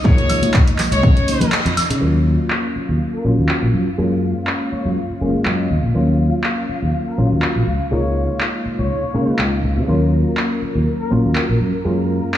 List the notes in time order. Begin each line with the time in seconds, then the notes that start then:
Already playing: D#4 D#5
0.03 C#2 G#3 A#3 D#4 F4 C#5, kick, tambourine
0.18 closed hi-hat, high conga
0.29 open hi-hat, tambourine, low conga, high woodblock
0.43 closed hi-hat, tambourine, high conga
0.54 kick, clap, tambourine
0.67 closed hi-hat
0.78 muted fingered electric bass stroke, clap, open hi-hat, tambourine, low conga
0.92 C#2 C#5, closed hi-hat, tambourine
1.03 C#3, kick, tambourine
1.17 closed hi-hat
1.28 open hi-hat, tambourine, high conga
1.41 closed hi-hat, tambourine, high conga, low conga
1.52 clap, tambourine
1.65 F2, closed hi-hat
1.77 muted fingered electric bass stroke, open hi-hat, tambourine, high woodblock
1.90 C#3, closed hi-hat, tambourine
2.01 D#2 F#3 A#3 C#4 F4 F5
2.50 clap
2.76 muted fingered electric bass stroke
2.89 D#2
3.13 A#4
3.24 A#1 F#3 A#3 C#4 F4
3.38 D#2
3.49 clap
3.62 A#1
3.74 F#2
3.98 F#2 G#3 A#3 C#4 F4
4.47 clap
4.72 C#5, muted fingered electric bass stroke
4.85 F#2
5.10 muted fingered electric bass stroke
5.21 F#1 G#3 A#3 C#4 F4
5.34 muted fingered electric bass stroke
5.45 F#2 D#5, clap
5.70 D#2
5.84 A#1
5.94 D#2 F#3 A#3 C#4 F4
6.44 clap
6.69 muted fingered electric bass stroke
6.82 D#2
7.07 A#4
7.18 A#1 F#3 A#3 C#4 F4
7.31 D#2
7.42 clap
7.56 A#1
7.67 C#2
7.91 C#2 G#3 A#3 D#4 F4 C#5
8.40 clap
8.65 muted fingered electric bass stroke
8.79 C#2 C#5
9.03 muted fingered electric bass stroke
9.14 C#3 G#3 A#3 D#4 F4
9.28 muted fingered electric bass stroke
9.39 C#2, clap
9.64 C#2
9.77 C#3
9.88 D#2 F#3 A#3 C#4 F4 A#4 A#5
10.37 clap
10.62 muted fingered electric bass stroke
10.75 D#2
11.00 A#4
11.11 A#1 F#3 A#3 C#4 F4
11.25 D#2
11.35 clap
11.49 A#1
11.60 F#2
11.85 F#2 G#3 A#3 C#4 F4
12.34 clap